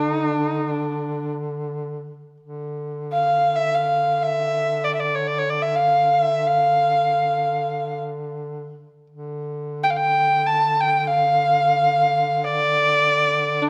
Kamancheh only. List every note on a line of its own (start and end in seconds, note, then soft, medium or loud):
0.00 0.09 D4 medium
0.09 0.28 D#4 medium
0.28 0.47 D4 medium
0.47 0.65 D#4 medium
0.65 1.31 D4 medium
3.13 3.57 F5 medium
3.56 3.76 E5 medium
3.74 4.24 F5 medium
4.22 4.86 E5 medium
4.84 4.94 D5 medium
4.95 5.02 E5 medium
5.00 5.17 D5 medium
5.15 5.29 C#5 medium
5.27 5.40 D5 medium
5.38 5.51 C#5 medium
5.50 5.63 D5 medium
5.62 5.77 E5 medium
5.75 6.15 F5 medium
6.13 6.48 E5 medium
6.47 8.00 F5 medium
9.83 9.92 G5 medium
9.90 9.98 F5 medium
9.97 10.48 G5 medium
10.47 10.82 A5 medium
10.80 11.00 G5 medium
11.00 11.09 G5 medium
11.07 12.46 F5 medium
12.44 13.64 D5 medium
13.63 13.70 D4 medium